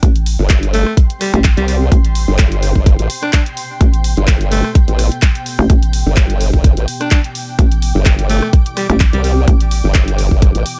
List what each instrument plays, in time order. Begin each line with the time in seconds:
Already playing: ambient pad A3 B3 C4 G5 C6
0.03 fm bass A1, kick, closed hi-hat
0.16 closed hi-hat
0.26 open hi-hat
0.39 wobble bass G1
0.50 kick, clap, closed hi-hat
0.63 closed hi-hat
0.74 alto saxophone A3, open hi-hat
0.86 cross-stick
0.97 kick, closed hi-hat
1.10 closed hi-hat
1.21 alto saxophone G3, cross-stick, open hi-hat
1.34 fm bass A1, alto saxophone G3, closed hi-hat
1.44 kick, clap, closed hi-hat
1.57 wobble bass C2, alto saxophone G3, closed hi-hat
1.68 alto saxophone G3, open hi-hat
1.92 fm bass A1, kick, closed hi-hat
2.05 closed hi-hat
2.15 open hi-hat
2.28 wobble bass G1
2.39 kick, clap, closed hi-hat
2.52 closed hi-hat
2.63 open hi-hat
2.75 wobble bass G1, kick
2.86 kick, closed hi-hat
2.99 wobble bass A1, closed hi-hat
3.10 open hi-hat
3.23 alto saxophone D4, cross-stick, closed hi-hat
3.33 alto saxophone D4, kick, clap, closed hi-hat
3.46 closed hi-hat
3.57 open hi-hat
3.81 fm bass A1, kick, closed hi-hat
3.94 closed hi-hat
4.04 open hi-hat
4.17 wobble bass G1, closed hi-hat
4.28 kick, clap, closed hi-hat
4.41 closed hi-hat
4.52 alto saxophone A3, open hi-hat
4.64 cross-stick
4.75 kick, closed hi-hat
4.88 wobble bass A1, closed hi-hat
4.99 cross-stick, open hi-hat
5.12 closed hi-hat
5.22 kick, clap, closed hi-hat
5.35 closed hi-hat
5.46 open hi-hat
5.59 fm bass A1
5.70 fm bass A1, ambient pad E4, kick, closed hi-hat
5.83 closed hi-hat
5.93 open hi-hat
6.06 wobble bass G1
6.17 ambient pad D6, kick, clap, closed hi-hat
6.30 closed hi-hat
6.41 open hi-hat
6.53 wobble bass G1, kick
6.64 kick, closed hi-hat
6.77 wobble bass A1, closed hi-hat
6.88 open hi-hat
7.01 alto saxophone D4, cross-stick, closed hi-hat
7.11 alto saxophone D4, kick, clap, closed hi-hat
7.24 closed hi-hat
7.35 open hi-hat
7.59 fm bass A1, kick, closed hi-hat
7.72 closed hi-hat
7.82 open hi-hat
7.95 wobble bass G1
8.06 kick, clap, closed hi-hat
8.19 closed hi-hat
8.30 alto saxophone A3, open hi-hat
8.42 cross-stick
8.53 kick, closed hi-hat
8.66 closed hi-hat
8.77 alto saxophone G3, cross-stick, open hi-hat
8.90 fm bass A1, alto saxophone G3, closed hi-hat
9.00 kick, clap, closed hi-hat
9.13 wobble bass C2, alto saxophone G3, closed hi-hat
9.24 alto saxophone G3, open hi-hat
9.48 fm bass A1, kick, closed hi-hat
9.61 closed hi-hat
9.71 open hi-hat
9.84 wobble bass G1
9.95 kick, clap, closed hi-hat
10.08 closed hi-hat
10.18 open hi-hat
10.31 wobble bass G1, kick
10.42 kick, closed hi-hat
10.55 wobble bass A1, closed hi-hat
10.66 open hi-hat